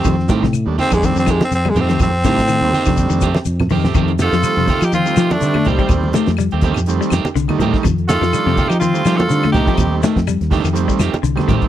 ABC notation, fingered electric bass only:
X:1
M:4/4
L:1/16
Q:"Swing 16ths" 1/4=123
K:Fmix
V:1 name="Fingered electric bass" clef=bass
F,,2 A,,3 E,, z F,,2 F,,2 z F,,2 F,,2 | F,,2 A,,3 E,, z F,,2 F,,2 z F,,2 F,,2 | F,,3 F,, z F,, z F,2 z F,2 D,2 C,, z | E,,2 z F,,2 E,,2 F,,2 z F,, z C,, z A,, z |
F,,3 F,, z F,, z F,2 z F,2 D,2 C,, z | E,,2 z F,,2 E,,2 F,,2 z F,, z C,, z A,, z |]